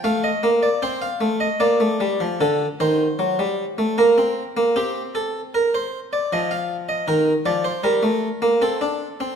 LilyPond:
<<
  \new Staff \with { instrumentName = "Harpsichord" } { \time 3/4 \key ees \major \tempo 4 = 77 f''16 ees''8 d''16 c''16 f''8 ees''16 d''4 | a'8 c''4. bes'4 | g'8 a'8 bes'16 c''8 d''16 ees''16 f''8 ees''16 | bes'8 d''16 c''16 bes'4 a'4 | }
  \new Staff \with { instrumentName = "Harpsichord" } { \time 3/4 \key ees \major a8 bes8 c'8 a8 bes16 a16 g16 f16 | d8 ees8 fis16 g8 a16 bes16 c'8 bes16 | c'2 f4 | ees8 f8 g16 a8 bes16 c'16 d'8 c'16 | }
>>